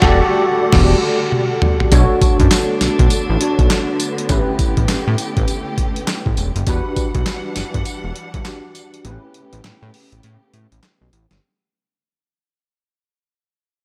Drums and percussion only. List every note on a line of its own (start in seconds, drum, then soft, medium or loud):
0.02 kick loud
0.02 snare loud
0.73 kick loud
0.73 snare loud
0.73 crash medium
1.32 high tom medium
1.62 mid tom loud
1.80 floor tom medium
1.92 kick loud
1.92 closed hi-hat medium
1.92 tambourine medium
2.21 kick loud
2.21 closed hi-hat medium
2.21 tambourine medium
2.40 kick loud
2.40 closed hi-hat medium
2.51 snare loud
2.51 clap loud
2.51 closed hi-hat medium
2.51 tambourine medium
2.81 snare medium
2.81 closed hi-hat medium
2.81 tambourine medium
2.99 kick loud
2.99 closed hi-hat medium
3.10 closed hi-hat medium
3.10 tambourine medium
3.41 closed hi-hat medium
3.59 kick loud
3.59 closed hi-hat medium
3.70 snare loud
3.70 clap medium
3.70 closed hi-hat medium
3.70 tambourine medium
4.00 closed hi-hat medium
4.00 tambourine medium
4.18 closed hi-hat medium
4.29 kick loud
4.29 closed hi-hat medium
4.29 tambourine medium
4.59 kick loud
4.59 closed hi-hat medium
4.59 tambourine medium
4.77 kick loud
4.77 closed hi-hat medium
4.88 snare loud
4.88 clap loud
4.88 closed hi-hat medium
4.88 tambourine medium
5.18 closed hi-hat medium
5.18 tambourine medium
5.37 kick loud
5.37 closed hi-hat medium
5.48 closed hi-hat medium
5.48 tambourine medium
5.78 kick loud
5.78 closed hi-hat medium
5.96 closed hi-hat medium
6.07 snare loud
6.07 clap medium
6.07 closed hi-hat medium
6.07 tambourine medium
6.26 kick loud
6.37 closed hi-hat medium
6.37 tambourine medium
6.56 closed hi-hat medium
6.67 kick loud
6.67 closed hi-hat medium
6.67 tambourine medium
6.96 kick medium
6.96 closed hi-hat medium
6.96 tambourine medium
7.15 kick loud
7.15 closed hi-hat medium
7.26 snare loud
7.26 clap medium
7.26 closed hi-hat medium
7.26 tambourine medium
7.56 snare medium
7.56 closed hi-hat medium
7.56 tambourine medium
7.74 kick medium
7.74 closed hi-hat medium
7.85 closed hi-hat medium
7.85 tambourine medium
8.16 closed hi-hat medium
8.34 kick loud
8.34 closed hi-hat medium
8.45 snare loud
8.45 clap medium
8.45 closed hi-hat medium
8.45 tambourine medium
8.75 closed hi-hat medium
8.75 tambourine medium
8.94 closed hi-hat soft
9.05 closed hi-hat medium
9.34 closed hi-hat medium
9.53 closed hi-hat medium
9.64 snare loud
9.64 clap medium
9.64 closed hi-hat medium
9.94 open hi-hat medium
10.12 closed hi-hat medium
10.23 closed hi-hat medium
10.54 closed hi-hat medium
10.72 closed hi-hat medium
10.83 snare loud
10.83 clap medium
10.83 closed hi-hat medium
11.13 closed hi-hat medium
11.31 snare medium
11.31 closed hi-hat soft